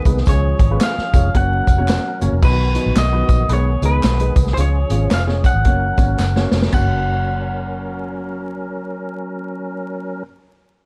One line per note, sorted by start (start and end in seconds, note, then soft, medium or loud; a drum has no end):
0.00 0.25 D#3 medium
0.00 0.25 B3 medium
0.00 1.32 G#4 medium
0.05 0.22 C2 medium
0.05 0.17 G#3 medium
0.05 0.17 B3 medium
0.05 0.17 D#4 medium
0.05 0.17 B4 medium
0.05 kick medium
0.05 closed hi-hat medium
0.05 tambourine medium
0.17 snare soft
0.26 0.52 C#2 loud
0.26 1.33 F3 medium
0.26 0.54 G#3 medium
0.26 2.40 C#4 medium
0.26 0.54 C#4 medium
0.26 0.54 F4 medium
0.26 0.54 C#5 medium
0.26 0.83 C#5 medium
0.26 kick loud
0.26 closed hi-hat medium
0.26 tambourine medium
0.59 0.76 G#1 loud
0.59 kick loud
0.59 closed hi-hat medium
0.71 0.91 G#3 medium
0.71 0.91 C#4 medium
0.71 0.91 F4 medium
0.71 0.91 B4 medium
0.80 1.36 F5 loud
0.80 snare loud
0.80 clap loud
0.80 closed hi-hat medium
0.80 tambourine loud
0.98 muted fingered electric bass stroke soft
0.98 snare soft
1.14 1.30 F1 medium
1.14 1.25 G#3 medium
1.14 1.25 C#4 medium
1.14 1.25 F4 medium
1.14 1.25 C#5 medium
1.14 kick medium
1.14 closed hi-hat medium
1.14 tambourine medium
1.34 1.60 F#1 medium
1.34 2.41 F#3 medium
1.34 1.61 A#3 medium
1.34 1.61 C#4 medium
1.34 1.61 F#4 medium
1.34 2.42 A#4 medium
1.34 1.61 C#5 medium
1.34 2.18 F#5 medium
1.34 kick medium
1.34 closed hi-hat medium
1.34 tambourine soft
1.67 1.97 F1 medium
1.67 kick medium
1.67 closed hi-hat medium
1.67 tambourine soft
1.78 1.99 A#3 medium
1.78 1.99 C#4 medium
1.78 1.99 F#4 medium
1.78 1.99 C#5 medium
1.88 snare loud
1.88 clap medium
1.88 closed hi-hat medium
1.88 tambourine medium
2.21 2.30 F#1 medium
2.21 2.33 A#3 medium
2.21 2.33 C#4 medium
2.21 2.33 F#4 medium
2.21 2.33 C#5 medium
2.21 closed hi-hat medium
2.21 tambourine soft
2.32 2.40 F1 medium
2.42 2.76 B1 loud
2.42 3.49 D#3 medium
2.42 2.60 F#3 medium
2.42 2.60 B3 medium
2.42 4.56 B3 medium
2.42 2.60 D#4 medium
2.42 3.49 F#4 medium
2.42 2.60 B4 medium
2.42 2.99 B4 medium
2.42 kick loud
2.42 crash medium
2.42 tambourine medium
2.75 2.92 F#3 medium
2.75 2.92 B3 medium
2.75 2.92 D#4 medium
2.75 2.92 B4 medium
2.75 closed hi-hat medium
2.75 tambourine soft
2.86 2.94 A#1 medium
2.96 3.21 B1 medium
2.96 3.53 D#5 loud
2.96 snare loud
2.96 clap loud
2.96 closed hi-hat medium
2.96 tambourine loud
3.12 3.36 F#3 medium
3.12 3.35 B3 medium
3.12 3.35 D#4 medium
3.12 3.36 B4 medium
3.29 3.46 A#1 medium
3.29 kick medium
3.29 closed hi-hat medium
3.29 tambourine medium
3.49 3.75 B1 medium
3.49 4.57 D#3 medium
3.49 3.67 G#3 medium
3.49 3.68 B3 medium
3.49 3.68 D#4 medium
3.49 5.63 G#4 medium
3.49 3.67 B4 medium
3.49 closed hi-hat medium
3.49 tambourine soft
3.53 3.85 C#5 medium
3.82 3.99 C#2 medium
3.82 4.00 G#3 medium
3.82 4.00 B3 medium
3.82 4.00 D#4 medium
3.82 4.00 G#4 medium
3.82 4.34 B4 medium
3.82 closed hi-hat medium
3.82 tambourine soft
4.03 4.29 B1 medium
4.03 snare loud
4.03 clap medium
4.03 closed hi-hat medium
4.03 tambourine medium
4.20 4.43 G#3 medium
4.20 4.43 B3 medium
4.20 4.43 D#4 medium
4.20 4.43 B4 medium
4.20 closed hi-hat medium
4.36 4.53 C2 medium
4.36 kick medium
4.36 closed hi-hat medium
4.36 tambourine medium
4.47 snare soft
4.54 4.83 C#2 loud
4.54 4.75 G#3 medium
4.54 4.75 C#4 medium
4.54 6.71 C#4 medium
4.54 4.76 F4 medium
4.54 4.59 C5 medium
4.54 4.75 C#5 medium
4.54 closed hi-hat medium
4.54 tambourine medium
4.59 5.65 F3 medium
4.59 5.15 C#5 medium
4.90 5.07 G#1 loud
4.90 5.08 G#3 medium
4.90 5.08 C#4 medium
4.90 5.08 F4 medium
4.90 5.08 C#5 medium
4.90 closed hi-hat medium
4.90 tambourine soft
5.11 5.45 F1 medium
5.11 5.22 F5 medium
5.11 snare loud
5.11 clap loud
5.11 closed hi-hat medium
5.11 tambourine loud
5.27 5.51 G#3 medium
5.27 5.51 C#4 medium
5.27 5.51 F4 medium
5.27 5.51 C#5 medium
5.27 snare soft
5.44 6.49 F#5 medium
5.44 kick medium
5.44 closed hi-hat medium
5.44 tambourine medium
5.54 5.65 G#1 medium
5.65 5.91 F#1 medium
5.65 6.72 F#3 medium
5.65 5.83 A#3 medium
5.65 5.83 C#4 medium
5.65 5.83 F#4 medium
5.65 6.72 A#4 medium
5.65 5.83 C#5 medium
5.65 kick medium
5.65 closed hi-hat medium
5.97 6.15 G#1 medium
5.97 6.15 A#3 medium
5.97 6.15 C#4 medium
5.97 6.15 F#4 medium
5.97 6.15 C#5 medium
5.97 kick medium
5.97 closed hi-hat medium
5.97 tambourine soft
6.19 6.44 F#1 medium
6.19 snare medium
6.19 clap medium
6.19 tambourine medium
6.36 6.59 A#3 medium
6.36 6.59 C#4 medium
6.36 6.59 F#4 medium
6.36 6.59 C#5 medium
6.36 snare medium
6.51 6.69 F1 medium
6.51 snare medium
6.51 tambourine soft
6.62 snare medium
6.72 10.21 F#1 medium
6.72 10.23 F#3 medium
6.72 10.20 A#3 medium
6.72 10.21 C#4 medium
6.72 10.23 C#4 medium
6.72 10.23 F#4 medium
6.72 10.24 A#4 medium
6.72 10.24 C#5 medium
6.72 10.22 F#5 medium
6.72 kick medium
6.72 floor tom medium
6.72 tambourine medium
6.72 crash medium